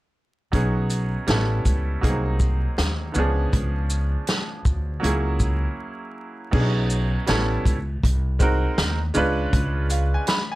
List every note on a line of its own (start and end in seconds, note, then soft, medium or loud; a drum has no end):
0.52 1.15 B1 medium
0.52 1.27 F#3 medium
0.52 1.26 B3 medium
0.52 1.27 C#4 medium
0.52 1.29 D#4 medium
0.52 1.29 G#4 medium
0.52 kick loud
0.52 closed hi-hat medium
0.90 closed hi-hat soft
0.90 shaker soft
1.27 1.59 A1 medium
1.27 2.02 G3 medium
1.27 2.02 B3 medium
1.27 2.03 C#4 medium
1.27 2.04 E4 medium
1.27 2.04 A4 medium
1.27 snare medium
1.27 closed hi-hat medium
1.65 1.96 C#2 medium
1.65 kick medium
1.65 closed hi-hat soft
1.65 shaker soft
2.01 2.65 C2 medium
2.01 3.15 F#3 medium
2.01 3.15 A#3 medium
2.01 2.11 B3 soft
2.01 3.16 D#4 medium
2.01 3.16 G#4 medium
2.01 kick medium
2.01 closed hi-hat medium
2.10 3.19 C4 medium
2.40 kick medium
2.40 shaker soft
2.78 3.09 D#2 medium
2.78 snare loud
2.78 closed hi-hat medium
3.12 3.46 C#2 medium
3.12 3.22 D3 medium
3.12 4.98 B3 medium
3.12 4.99 C#4 medium
3.12 shaker soft
3.17 5.01 F3 medium
3.17 5.00 D4 medium
3.17 5.01 G#4 medium
3.53 4.15 C#2 medium
3.53 kick loud
3.53 closed hi-hat medium
3.90 shaker medium
4.27 snare medium
4.27 closed hi-hat medium
4.65 4.96 D2 medium
4.65 kick medium
4.65 shaker soft
5.00 5.65 C#2 medium
5.00 6.48 F#3 medium
5.00 6.49 A#3 medium
5.00 6.50 C#4 medium
5.04 6.51 E4 medium
5.04 6.52 G#4 medium
5.04 closed hi-hat medium
5.40 kick medium
5.40 shaker medium
6.51 7.15 B1 loud
6.51 7.27 F#3 medium
6.51 7.26 B3 medium
6.51 7.27 C#4 medium
6.51 6.62 D4 soft
6.51 7.29 G#4 medium
6.51 kick loud
6.51 crash medium
6.60 7.32 D#4 medium
6.90 shaker soft
7.26 7.59 A1 medium
7.26 7.74 G3 medium
7.26 7.75 B3 medium
7.26 7.75 C#4 medium
7.26 7.75 E4 medium
7.26 7.76 A4 medium
7.26 snare loud
7.26 closed hi-hat medium
7.65 7.96 C#2 medium
7.65 kick medium
7.65 closed hi-hat soft
7.65 shaker soft
8.04 8.65 C2 loud
8.04 kick medium
8.04 closed hi-hat medium
8.39 8.96 G#3 medium
8.39 8.97 C4 medium
8.39 8.97 D#4 medium
8.39 8.98 F#4 medium
8.39 8.98 A#4 medium
8.39 kick medium
8.39 shaker medium
8.78 9.09 D#2 medium
8.78 snare loud
8.78 closed hi-hat medium
9.14 9.46 C#2 medium
9.14 10.37 G#3 medium
9.14 10.37 C#4 medium
9.14 10.38 D4 medium
9.14 10.38 F4 medium
9.14 10.38 B4 medium
9.14 shaker medium
9.53 10.15 C#2 medium
9.53 kick loud
9.53 closed hi-hat medium
9.90 10.13 F5 medium
9.90 closed hi-hat soft
9.90 shaker medium
10.14 10.27 G#5 medium
10.27 10.51 B5 medium
10.27 snare loud
10.27 closed hi-hat medium
10.52 10.55 G#5 medium